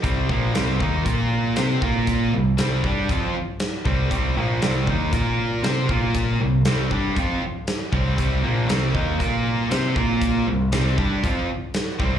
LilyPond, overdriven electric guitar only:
\new Staff \with { instrumentName = "Overdriven electric guitar" } { \time 4/4 \key bes \lydian \tempo 4 = 118 <c g c'>8 <bes, f bes>8 <c g c'>8 <ees bes ees'>8 <bes f' bes'>4 <c' g' c''>8 <bes f' bes'>8~ | <bes f' bes'>8 <c g>8 <c g c'>8 <g d' g'>8 <f c' f'>8 r4 <c g c'>8 | <c g c'>8 <bes, f bes>8 <c g c'>8 <ees bes ees'>8 <bes f' bes'>4 <c' g' c''>8 <bes f' bes'>8~ | <bes f' bes'>8 <c g>8 <c g c'>8 <g d' g'>8 <f c' f'>8 r4 <c g c'>8 |
<c g c'>8 <bes, f bes>8 <c g c'>8 <ees bes ees'>8 <bes f' bes'>4 <c' g' c''>8 <bes f' bes'>8~ | <bes f' bes'>8 <c g>8 <c g c'>8 <g d' g'>8 <f c' f'>8 r4 <c g c'>8 | }